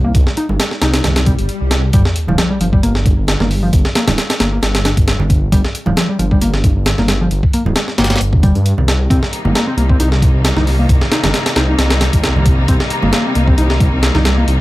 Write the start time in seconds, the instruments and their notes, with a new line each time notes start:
Already playing: detuned saw bass C2
0.05 picked electric bass A#3
0.15 detuned saw bass C2, kick, closed hi-hat, high conga
0.27 snare
0.37 picked electric bass D#4, closed hi-hat
0.49 detuned saw bass G1, high conga
0.60 snare, closed hi-hat
0.71 snare
0.82 detuned saw bass C2, picked electric bass D#4, snare, closed hi-hat
0.94 picked electric bass D#4, snare, closed hi-hat
1.04 detuned saw bass C2, snare, closed hi-hat, swell, low conga
1.16 snare, closed hi-hat, high conga
1.26 picked electric bass G3, kick, closed hi-hat
1.38 detuned saw bass G1, closed hi-hat
1.49 closed hi-hat
1.61 detuned saw bass C2
1.71 snare, closed hi-hat
1.93 detuned saw bass G1, picked electric bass G3, kick, closed hi-hat, sub drop
2.05 snare
2.16 closed hi-hat
2.27 detuned saw bass D1, picked electric bass F3, high conga, low conga
2.38 picked electric bass F3, snare, closed hi-hat
2.50 picked electric bass G3
2.60 detuned saw bass G1, picked electric bass F3, closed hi-hat
2.73 picked electric bass G3, kick
2.83 detuned saw bass G1, picked electric bass A#3, closed hi-hat
2.95 snare
3.06 kick, closed hi-hat, high conga
3.17 detuned saw bass G1
3.28 snare, closed hi-hat
3.40 detuned saw bass G1, picked electric bass A#3, snare, low conga
3.51 open hi-hat, high conga
3.63 picked electric bass F3
3.73 detuned saw bass G1, kick, closed hi-hat
3.85 snare
3.95 picked electric bass A#3, snare, closed hi-hat
4.07 detuned saw bass D1, snare, closed hi-hat, high conga, low conga
4.18 snare, closed hi-hat
4.30 snare, closed hi-hat
4.40 detuned saw bass G1, picked electric bass A#3, snare, closed hi-hat
4.52 picked electric bass A#3
4.62 detuned saw bass G1, snare, closed hi-hat
4.75 snare, closed hi-hat
4.85 picked electric bass D4, snare, closed hi-hat
4.97 detuned saw bass G1, kick, closed hi-hat
5.08 snare, closed hi-hat
5.19 detuned saw bass G1, low conga
5.30 kick, closed hi-hat
5.52 detuned saw bass G1, picked electric bass G3, kick, closed hi-hat
5.65 snare
5.75 closed hi-hat
5.86 detuned saw bass D1, picked electric bass F3, high conga, low conga
5.97 picked electric bass F3, snare, closed hi-hat
6.09 picked electric bass G3
6.19 detuned saw bass G1, picked electric bass F3, closed hi-hat
6.31 picked electric bass G3, kick
6.41 detuned saw bass G1, picked electric bass A#3, closed hi-hat
6.54 snare
6.64 kick, closed hi-hat, high conga
6.76 detuned saw bass G1
6.86 snare, closed hi-hat
6.98 detuned saw bass G1, picked electric bass A#3, snare, low conga
7.08 snare, closed hi-hat, high conga
7.21 picked electric bass F3
7.31 detuned saw bass G1, closed hi-hat
7.43 kick
7.53 picked electric bass A#3, closed hi-hat
7.65 detuned saw bass D1, high conga, low conga
7.76 snare, closed hi-hat
7.88 snare
7.98 detuned saw bass G1, picked electric bass A#3, snare, closed hi-hat
8.04 snare, closed hi-hat
8.10 picked electric bass A#3, snare, closed hi-hat
8.16 snare, closed hi-hat
8.21 detuned saw bass G1, closed hi-hat
8.33 kick
8.43 picked electric bass G3, kick, closed hi-hat
8.55 detuned saw bass G2, closed hi-hat
8.66 closed hi-hat
8.78 detuned saw bass C2, low conga
8.88 snare, closed hi-hat
9.09 detuned saw bass C2, string section C3 D#3 G3 A#3 D#4, picked electric bass C4, kick, closed hi-hat
9.23 snare
9.33 closed hi-hat
9.45 detuned saw bass G1, picked electric bass A#3, high conga, low conga
9.55 picked electric bass A#3, snare, closed hi-hat
9.67 picked electric bass C4
9.77 detuned saw bass C2, picked electric bass A#3, closed hi-hat
9.89 picked electric bass C4, kick
10.00 detuned saw bass C2, picked electric bass D#4, closed hi-hat
10.12 snare
10.22 kick, closed hi-hat, high conga
10.34 detuned saw bass C2
10.45 snare, closed hi-hat
10.56 detuned saw bass C2, picked electric bass D#4, snare, low conga
10.67 open hi-hat, high conga
10.79 picked electric bass A#3
10.89 detuned saw bass C2, kick, closed hi-hat
11.01 snare
11.12 picked electric bass D#4, snare, closed hi-hat
11.23 detuned saw bass G1, snare, closed hi-hat, high conga, low conga
11.34 snare, closed hi-hat
11.46 snare, closed hi-hat
11.56 detuned saw bass C2, picked electric bass D#4, snare, closed hi-hat
11.69 picked electric bass D#4
11.78 detuned saw bass C2, snare, closed hi-hat
11.90 snare, closed hi-hat
12.01 picked electric bass G3, snare, closed hi-hat
12.13 detuned saw bass C2, kick, closed hi-hat
12.24 snare, closed hi-hat
12.35 detuned saw bass C2, low conga
12.46 kick, closed hi-hat
12.68 detuned saw bass C2, picked electric bass C4, kick, closed hi-hat
12.80 snare
12.90 closed hi-hat
13.02 detuned saw bass G1, picked electric bass A#3, high conga, low conga
13.13 picked electric bass A#3, snare, closed hi-hat
13.26 picked electric bass C4
13.35 detuned saw bass C2, picked electric bass A#3, closed hi-hat
13.48 picked electric bass C4, kick
13.58 detuned saw bass C2, picked electric bass D#4, closed hi-hat
13.70 snare
13.80 kick, closed hi-hat, high conga
13.93 detuned saw bass C2
14.03 snare, closed hi-hat
14.15 detuned saw bass C2, picked electric bass D#4, snare, low conga
14.25 snare, closed hi-hat, high conga
14.38 picked electric bass A#3
14.48 detuned saw bass C2, closed hi-hat